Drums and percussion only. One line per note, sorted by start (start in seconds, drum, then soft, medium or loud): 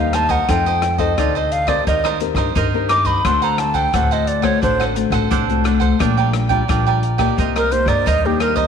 0.13 cross-stick medium
0.13 closed hi-hat soft
0.30 kick medium
0.30 closed hi-hat soft
0.49 kick medium
0.49 cross-stick medium
0.49 closed hi-hat medium
0.82 cross-stick medium
0.82 closed hi-hat soft
0.99 kick medium
0.99 closed hi-hat soft
1.18 kick medium
1.18 cross-stick medium
1.18 closed hi-hat medium
1.52 closed hi-hat soft
1.68 kick medium
1.68 cross-stick medium
1.68 closed hi-hat soft
1.87 kick medium
1.87 closed hi-hat medium
2.05 cross-stick medium
2.05 closed hi-hat soft
2.20 closed hi-hat soft
2.37 kick medium
2.37 cross-stick medium
2.37 closed hi-hat soft
2.56 kick medium
2.56 closed hi-hat medium
2.89 cross-stick medium
2.89 closed hi-hat medium
3.05 kick medium
3.05 closed hi-hat soft
3.25 kick medium
3.25 cross-stick medium
3.25 closed hi-hat medium
3.58 cross-stick medium
3.58 closed hi-hat soft
3.74 kick medium
3.74 closed hi-hat soft
3.94 kick medium
3.94 cross-stick medium
3.94 closed hi-hat medium
4.12 closed hi-hat soft
4.27 closed hi-hat soft
4.43 kick medium
4.43 cross-stick medium
4.63 kick medium
4.63 closed hi-hat medium
4.81 cross-stick medium
4.96 closed hi-hat medium
5.12 kick medium
5.12 cross-stick medium
5.12 closed hi-hat soft
5.31 kick medium
5.31 closed hi-hat medium
5.49 closed hi-hat soft
5.65 cross-stick medium
5.65 closed hi-hat soft
5.81 kick medium
5.81 closed hi-hat soft
6.00 kick medium
6.00 cross-stick medium
6.00 closed hi-hat medium
6.34 cross-stick medium
6.34 closed hi-hat soft
6.50 kick medium
6.50 closed hi-hat soft
6.69 kick medium
6.69 cross-stick medium
6.69 closed hi-hat medium
7.03 closed hi-hat soft
7.19 kick medium
7.19 cross-stick medium
7.19 closed hi-hat soft
7.38 kick medium
7.38 closed hi-hat medium
7.56 cross-stick medium
7.56 closed hi-hat soft
7.72 closed hi-hat medium
7.88 kick medium
7.88 cross-stick medium
7.88 closed hi-hat soft
8.07 kick medium
8.07 closed hi-hat medium
8.40 cross-stick medium
8.40 closed hi-hat soft
8.57 kick medium
8.57 closed hi-hat soft